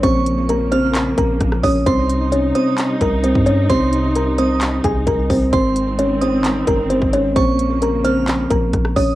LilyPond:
<<
  \new Staff \with { instrumentName = "Synth bell" } { \time 4/4 \key c \phrygian \tempo 4 = 131 des'''4. f'''8 r4. ees'''8 | c'''4. ees'''4. r4 | c'''4. ees'''8 r2 | c'''4. ees'''4. r4 |
des'''4. f'''8 r4. ees'''8 | }
  \new Staff \with { instrumentName = "Kalimba" } { \time 4/4 \key c \phrygian <c' c''>4 <bes' bes''>8 <c' c''>4 <bes' bes''>4 <des' des''>8 | <c' c''>4 <des' des''>8 <c' c''>4 <bes' bes''>8 <c' c''>8 <des' des''>8 | <c' c''>4 <bes' bes''>8 <c' c''>4 <aes' aes''>8 <bes' bes''>8 <c' c''>8 | <c' c''>4 <des' des''>8 <c' c''>4 <bes' bes''>8 <c' c''>8 <des' des''>8 |
<c' c''>4 <bes' bes''>8 <c' c''>4 <bes' bes''>4 <des' des''>8 | }
  \new Staff \with { instrumentName = "String section" } { \clef bass \time 4/4 \key c \phrygian <des f bes>1 | <c g ees'>1~ | <c g ees'>1 | <ees aes c'>1 |
<des f bes>1 | }
  \new Staff \with { instrumentName = "808-style bass" } { \clef bass \time 4/4 \key c \phrygian bes,,2~ bes,,8 bes,,8 bes,,8 bes,,8 | c,4. r4 c,8. g,8. | c,2~ c,8 c,8 c,8 c,8 | aes,,2~ aes,,8 g,,8. aes,,8. |
bes,,2~ bes,,8 bes,,8 bes,,8 bes,,8 | }
  \new DrumStaff \with { instrumentName = "Drums" } \drummode { \time 4/4 <hh bd>8 hh8 hh8 hh8 <hc hh>8 <hh bd>8 <hh bd ss>16 ss16 <hho bd>8 | <hh bd>8 hh8 hh8 hh8 <hc hh>8 <hh bd>8 hh16 bd16 hh8 | <hh bd>8 hh8 hh8 hh8 <hc hh>8 <hh bd>8 <hh bd>8 <hho bd>8 | <hh bd>8 hh8 hh8 hh8 <hc hh>8 <hh bd>8 hh16 bd16 hh8 |
<hh bd>8 hh8 hh8 hh8 <hc hh>8 <hh bd>8 <hh bd ss>16 ss16 <hho bd>8 | }
>>